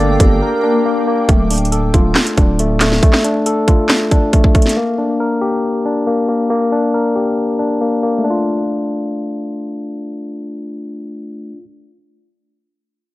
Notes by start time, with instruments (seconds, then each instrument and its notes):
Already playing: 808-style bass G1, tine electric piano A#3 D4, ambient pad A#3 G5 D6
0.00 soft synth lead A4, tine electric piano D5
0.20 808-style bass G1, tine electric piano G4, kick, closed hi-hat
0.42 soft synth lead A#4
0.64 tine electric piano D4
0.86 tine electric piano A#3
1.07 tine electric piano A#3
1.29 808-style bass D1, tine electric piano A3, kick, closed hi-hat
1.51 tine electric piano D4, closed hi-hat, open hi-hat
1.58 closed hi-hat
1.65 closed hi-hat
1.72 tine electric piano A4, closed hi-hat
1.94 808-style bass D1, tine electric piano F4, kick, closed hi-hat
2.15 snare, clap, closed hi-hat
2.27 closed hi-hat
2.37 808-style bass D1, tine electric piano D4, kick, closed hi-hat
2.59 tine electric piano A3, closed hi-hat
2.80 tine electric piano A3, snare, clap, closed hi-hat
2.92 snare
3.03 tine electric piano A3, kick, closed hi-hat
3.13 snare, clap
3.24 tine electric piano D4, closed hi-hat
3.46 tine electric piano A4, closed hi-hat
3.68 tine electric piano F4, kick, closed hi-hat
3.89 snare, clap, closed hi-hat
4.11 tine electric piano D4, kick, closed hi-hat
4.33 tine electric piano A3, kick, closed hi-hat
4.44 kick
4.55 tine electric piano A3, kick, closed hi-hat
4.62 snare, closed hi-hat
4.69 closed hi-hat
4.77 tine electric piano A#3
4.98 tine electric piano D4
5.20 tine electric piano A#4
5.41 tine electric piano G4
5.85 tine electric piano D4
6.07 tine electric piano A#3
6.29 tine electric piano A#3
6.50 tine electric piano A#3
6.72 tine electric piano D4
6.94 tine electric piano A#4
7.16 tine electric piano G4
7.59 tine electric piano D4
7.81 tine electric piano A#3
8.03 tine electric piano A#3
8.18 tine electric piano A3
8.24 tine electric piano D4
8.30 tine electric piano F4